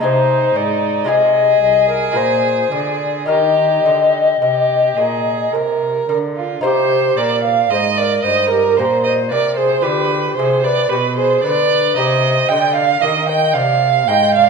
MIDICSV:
0, 0, Header, 1, 5, 480
1, 0, Start_track
1, 0, Key_signature, -3, "major"
1, 0, Tempo, 1063830
1, 16, Time_signature, 3, 2, 24, 8
1, 976, Tempo, 1119403
1, 2896, Key_signature, -3, "minor"
1, 2896, Tempo, 1063830
1, 6440, End_track
2, 0, Start_track
2, 0, Title_t, "Violin"
2, 0, Program_c, 0, 40
2, 18, Note_on_c, 0, 63, 63
2, 491, Note_on_c, 0, 68, 68
2, 497, Note_off_c, 0, 63, 0
2, 1455, Note_off_c, 0, 68, 0
2, 1458, Note_on_c, 0, 67, 57
2, 1884, Note_off_c, 0, 67, 0
2, 1940, Note_on_c, 0, 67, 57
2, 2179, Note_on_c, 0, 68, 56
2, 2185, Note_off_c, 0, 67, 0
2, 2420, Note_on_c, 0, 70, 57
2, 2426, Note_off_c, 0, 68, 0
2, 2658, Note_off_c, 0, 70, 0
2, 2660, Note_on_c, 0, 70, 52
2, 2694, Note_off_c, 0, 70, 0
2, 2777, Note_on_c, 0, 65, 48
2, 2893, Note_off_c, 0, 65, 0
2, 2898, Note_on_c, 0, 72, 72
2, 3135, Note_on_c, 0, 74, 68
2, 3142, Note_off_c, 0, 72, 0
2, 3252, Note_off_c, 0, 74, 0
2, 3255, Note_on_c, 0, 77, 65
2, 3378, Note_on_c, 0, 75, 73
2, 3384, Note_off_c, 0, 77, 0
2, 3498, Note_on_c, 0, 74, 66
2, 3504, Note_off_c, 0, 75, 0
2, 3613, Note_off_c, 0, 74, 0
2, 3616, Note_on_c, 0, 75, 72
2, 3731, Note_off_c, 0, 75, 0
2, 3734, Note_on_c, 0, 70, 64
2, 3856, Note_on_c, 0, 72, 57
2, 3863, Note_off_c, 0, 70, 0
2, 3974, Note_off_c, 0, 72, 0
2, 3977, Note_on_c, 0, 75, 54
2, 4013, Note_off_c, 0, 75, 0
2, 4097, Note_on_c, 0, 74, 74
2, 4216, Note_off_c, 0, 74, 0
2, 4218, Note_on_c, 0, 72, 69
2, 4333, Note_on_c, 0, 71, 78
2, 4340, Note_off_c, 0, 72, 0
2, 4572, Note_off_c, 0, 71, 0
2, 4574, Note_on_c, 0, 72, 62
2, 4700, Note_on_c, 0, 74, 70
2, 4707, Note_off_c, 0, 72, 0
2, 4816, Note_on_c, 0, 71, 69
2, 4822, Note_off_c, 0, 74, 0
2, 4937, Note_off_c, 0, 71, 0
2, 4940, Note_on_c, 0, 72, 68
2, 5057, Note_off_c, 0, 72, 0
2, 5059, Note_on_c, 0, 74, 80
2, 5296, Note_off_c, 0, 74, 0
2, 5299, Note_on_c, 0, 75, 74
2, 5535, Note_on_c, 0, 79, 79
2, 5542, Note_off_c, 0, 75, 0
2, 5653, Note_off_c, 0, 79, 0
2, 5655, Note_on_c, 0, 77, 80
2, 5774, Note_on_c, 0, 75, 74
2, 5781, Note_off_c, 0, 77, 0
2, 5892, Note_off_c, 0, 75, 0
2, 5895, Note_on_c, 0, 79, 73
2, 6008, Note_on_c, 0, 77, 83
2, 6015, Note_off_c, 0, 79, 0
2, 6252, Note_on_c, 0, 79, 89
2, 6258, Note_off_c, 0, 77, 0
2, 6371, Note_off_c, 0, 79, 0
2, 6374, Note_on_c, 0, 77, 76
2, 6440, Note_off_c, 0, 77, 0
2, 6440, End_track
3, 0, Start_track
3, 0, Title_t, "Recorder"
3, 0, Program_c, 1, 74
3, 16, Note_on_c, 1, 72, 78
3, 254, Note_on_c, 1, 74, 75
3, 261, Note_off_c, 1, 72, 0
3, 489, Note_on_c, 1, 75, 73
3, 496, Note_off_c, 1, 74, 0
3, 728, Note_off_c, 1, 75, 0
3, 731, Note_on_c, 1, 75, 71
3, 847, Note_off_c, 1, 75, 0
3, 850, Note_on_c, 1, 70, 62
3, 974, Note_on_c, 1, 72, 62
3, 980, Note_off_c, 1, 70, 0
3, 1212, Note_off_c, 1, 72, 0
3, 1215, Note_on_c, 1, 74, 67
3, 1455, Note_on_c, 1, 75, 73
3, 1462, Note_off_c, 1, 74, 0
3, 2419, Note_off_c, 1, 75, 0
3, 2895, Note_on_c, 1, 67, 71
3, 3139, Note_on_c, 1, 70, 61
3, 3145, Note_off_c, 1, 67, 0
3, 3260, Note_on_c, 1, 74, 64
3, 3267, Note_off_c, 1, 70, 0
3, 3378, Note_off_c, 1, 74, 0
3, 3381, Note_on_c, 1, 72, 61
3, 3408, Note_off_c, 1, 72, 0
3, 3500, Note_on_c, 1, 70, 53
3, 3615, Note_on_c, 1, 72, 56
3, 3622, Note_off_c, 1, 70, 0
3, 3739, Note_on_c, 1, 67, 53
3, 3746, Note_off_c, 1, 72, 0
3, 3858, Note_off_c, 1, 67, 0
3, 3861, Note_on_c, 1, 67, 50
3, 3888, Note_off_c, 1, 67, 0
3, 3980, Note_on_c, 1, 72, 59
3, 4100, Note_on_c, 1, 70, 54
3, 4107, Note_off_c, 1, 72, 0
3, 4218, Note_on_c, 1, 68, 57
3, 4225, Note_off_c, 1, 70, 0
3, 4337, Note_on_c, 1, 67, 63
3, 4344, Note_off_c, 1, 68, 0
3, 4574, Note_off_c, 1, 67, 0
3, 4577, Note_on_c, 1, 68, 56
3, 4695, Note_off_c, 1, 68, 0
3, 4698, Note_on_c, 1, 71, 61
3, 4811, Note_off_c, 1, 71, 0
3, 4814, Note_on_c, 1, 67, 64
3, 4842, Note_off_c, 1, 67, 0
3, 4936, Note_on_c, 1, 68, 54
3, 5059, Note_on_c, 1, 71, 63
3, 5066, Note_off_c, 1, 68, 0
3, 5299, Note_on_c, 1, 72, 67
3, 5306, Note_off_c, 1, 71, 0
3, 5540, Note_off_c, 1, 72, 0
3, 5542, Note_on_c, 1, 75, 62
3, 5569, Note_off_c, 1, 75, 0
3, 5661, Note_on_c, 1, 74, 66
3, 5688, Note_off_c, 1, 74, 0
3, 5778, Note_on_c, 1, 70, 74
3, 5896, Note_on_c, 1, 75, 72
3, 5903, Note_off_c, 1, 70, 0
3, 6011, Note_off_c, 1, 75, 0
3, 6014, Note_on_c, 1, 74, 66
3, 6168, Note_off_c, 1, 74, 0
3, 6256, Note_on_c, 1, 75, 75
3, 6368, Note_off_c, 1, 75, 0
3, 6379, Note_on_c, 1, 74, 61
3, 6440, Note_off_c, 1, 74, 0
3, 6440, End_track
4, 0, Start_track
4, 0, Title_t, "Lute"
4, 0, Program_c, 2, 24
4, 0, Note_on_c, 2, 56, 38
4, 4, Note_on_c, 2, 63, 41
4, 12, Note_on_c, 2, 68, 43
4, 18, Note_on_c, 2, 48, 44
4, 236, Note_off_c, 2, 48, 0
4, 251, Note_on_c, 2, 44, 41
4, 466, Note_off_c, 2, 56, 0
4, 470, Note_off_c, 2, 63, 0
4, 471, Note_on_c, 2, 56, 40
4, 472, Note_off_c, 2, 44, 0
4, 474, Note_off_c, 2, 68, 0
4, 478, Note_on_c, 2, 65, 37
4, 484, Note_on_c, 2, 68, 44
4, 490, Note_on_c, 2, 48, 45
4, 712, Note_off_c, 2, 48, 0
4, 948, Note_off_c, 2, 56, 0
4, 954, Note_off_c, 2, 65, 0
4, 954, Note_on_c, 2, 56, 39
4, 957, Note_off_c, 2, 68, 0
4, 961, Note_on_c, 2, 65, 37
4, 969, Note_on_c, 2, 70, 39
4, 974, Note_on_c, 2, 46, 44
4, 1196, Note_off_c, 2, 46, 0
4, 1213, Note_on_c, 2, 50, 45
4, 1432, Note_off_c, 2, 56, 0
4, 1435, Note_off_c, 2, 65, 0
4, 1439, Note_off_c, 2, 50, 0
4, 1439, Note_off_c, 2, 70, 0
4, 1445, Note_on_c, 2, 63, 34
4, 1451, Note_on_c, 2, 70, 34
4, 1457, Note_on_c, 2, 51, 40
4, 1682, Note_off_c, 2, 51, 0
4, 1702, Note_on_c, 2, 50, 38
4, 1925, Note_off_c, 2, 50, 0
4, 1943, Note_on_c, 2, 48, 42
4, 2165, Note_off_c, 2, 48, 0
4, 2182, Note_on_c, 2, 46, 38
4, 2403, Note_off_c, 2, 46, 0
4, 2426, Note_on_c, 2, 48, 36
4, 2646, Note_off_c, 2, 48, 0
4, 2660, Note_on_c, 2, 50, 39
4, 2873, Note_off_c, 2, 63, 0
4, 2876, Note_off_c, 2, 70, 0
4, 2879, Note_off_c, 2, 50, 0
4, 2882, Note_on_c, 2, 63, 43
4, 2890, Note_on_c, 2, 72, 44
4, 2895, Note_on_c, 2, 48, 45
4, 3121, Note_off_c, 2, 48, 0
4, 3138, Note_on_c, 2, 46, 46
4, 3363, Note_off_c, 2, 46, 0
4, 3376, Note_on_c, 2, 44, 46
4, 3603, Note_off_c, 2, 44, 0
4, 3623, Note_on_c, 2, 43, 44
4, 3846, Note_off_c, 2, 43, 0
4, 3865, Note_on_c, 2, 46, 50
4, 4086, Note_off_c, 2, 46, 0
4, 4104, Note_on_c, 2, 48, 45
4, 4317, Note_off_c, 2, 63, 0
4, 4322, Note_off_c, 2, 72, 0
4, 4325, Note_off_c, 2, 48, 0
4, 4329, Note_on_c, 2, 65, 40
4, 4335, Note_on_c, 2, 67, 41
4, 4344, Note_on_c, 2, 50, 46
4, 4566, Note_off_c, 2, 50, 0
4, 4588, Note_on_c, 2, 48, 50
4, 4811, Note_off_c, 2, 48, 0
4, 4830, Note_on_c, 2, 47, 49
4, 5052, Note_off_c, 2, 47, 0
4, 5071, Note_on_c, 2, 50, 49
4, 5282, Note_off_c, 2, 65, 0
4, 5285, Note_off_c, 2, 67, 0
4, 5291, Note_off_c, 2, 50, 0
4, 5296, Note_on_c, 2, 63, 44
4, 5304, Note_on_c, 2, 67, 43
4, 5311, Note_on_c, 2, 48, 48
4, 5528, Note_off_c, 2, 48, 0
4, 5547, Note_on_c, 2, 50, 47
4, 5761, Note_off_c, 2, 63, 0
4, 5764, Note_off_c, 2, 50, 0
4, 5765, Note_off_c, 2, 67, 0
4, 5766, Note_on_c, 2, 58, 40
4, 5773, Note_on_c, 2, 67, 46
4, 5780, Note_on_c, 2, 51, 53
4, 6000, Note_off_c, 2, 51, 0
4, 6003, Note_off_c, 2, 58, 0
4, 6013, Note_on_c, 2, 48, 50
4, 6236, Note_off_c, 2, 48, 0
4, 6255, Note_on_c, 2, 44, 49
4, 6440, Note_off_c, 2, 44, 0
4, 6440, Note_off_c, 2, 67, 0
4, 6440, End_track
5, 0, Start_track
5, 0, Title_t, "Cello"
5, 0, Program_c, 3, 42
5, 15, Note_on_c, 3, 48, 57
5, 248, Note_off_c, 3, 48, 0
5, 252, Note_on_c, 3, 44, 50
5, 486, Note_off_c, 3, 44, 0
5, 490, Note_on_c, 3, 48, 54
5, 725, Note_off_c, 3, 48, 0
5, 733, Note_on_c, 3, 36, 41
5, 971, Note_off_c, 3, 36, 0
5, 976, Note_on_c, 3, 46, 55
5, 1209, Note_off_c, 3, 46, 0
5, 1214, Note_on_c, 3, 50, 49
5, 1458, Note_on_c, 3, 51, 50
5, 1464, Note_off_c, 3, 50, 0
5, 1697, Note_off_c, 3, 51, 0
5, 1700, Note_on_c, 3, 50, 44
5, 1936, Note_off_c, 3, 50, 0
5, 1941, Note_on_c, 3, 48, 44
5, 2176, Note_off_c, 3, 48, 0
5, 2181, Note_on_c, 3, 46, 43
5, 2415, Note_off_c, 3, 46, 0
5, 2422, Note_on_c, 3, 48, 46
5, 2656, Note_off_c, 3, 48, 0
5, 2661, Note_on_c, 3, 50, 49
5, 2892, Note_off_c, 3, 50, 0
5, 2896, Note_on_c, 3, 48, 54
5, 3123, Note_off_c, 3, 48, 0
5, 3139, Note_on_c, 3, 46, 51
5, 3377, Note_off_c, 3, 46, 0
5, 3379, Note_on_c, 3, 44, 51
5, 3617, Note_off_c, 3, 44, 0
5, 3622, Note_on_c, 3, 43, 53
5, 3863, Note_on_c, 3, 46, 57
5, 3869, Note_off_c, 3, 43, 0
5, 4100, Note_on_c, 3, 48, 54
5, 4106, Note_off_c, 3, 46, 0
5, 4338, Note_off_c, 3, 48, 0
5, 4341, Note_on_c, 3, 50, 56
5, 4578, Note_off_c, 3, 50, 0
5, 4584, Note_on_c, 3, 48, 53
5, 4822, Note_off_c, 3, 48, 0
5, 4824, Note_on_c, 3, 47, 54
5, 5062, Note_off_c, 3, 47, 0
5, 5066, Note_on_c, 3, 50, 49
5, 5301, Note_off_c, 3, 50, 0
5, 5307, Note_on_c, 3, 48, 65
5, 5539, Note_off_c, 3, 48, 0
5, 5542, Note_on_c, 3, 50, 57
5, 5775, Note_off_c, 3, 50, 0
5, 5778, Note_on_c, 3, 51, 55
5, 6016, Note_on_c, 3, 48, 58
5, 6023, Note_off_c, 3, 51, 0
5, 6255, Note_on_c, 3, 44, 58
5, 6262, Note_off_c, 3, 48, 0
5, 6440, Note_off_c, 3, 44, 0
5, 6440, End_track
0, 0, End_of_file